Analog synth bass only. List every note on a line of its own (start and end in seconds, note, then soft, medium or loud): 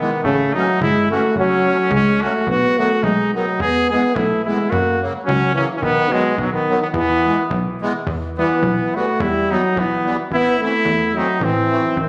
0.24 0.61 A1 medium
0.81 1.17 G1 loud
1.36 1.72 F#1 medium
1.91 2.27 C#2 loud
2.47 2.84 B1 medium
3.03 3.40 B1 medium
3.60 3.96 E2 medium
4.16 4.52 B1 loud
4.72 5.08 F#2 medium
5.28 5.64 C#2 loud
5.82 6.19 B1 medium
6.38 6.74 B1 medium
6.94 7.30 E2 medium
7.50 7.87 B1 loud
8.07 8.43 E2 medium
8.63 9.00 B1 medium
9.20 9.56 E2 medium
9.77 10.12 B1 medium
10.31 10.67 A1 medium
10.85 11.21 E2 medium
11.41 11.77 A1 medium
11.97 12.09 A1 medium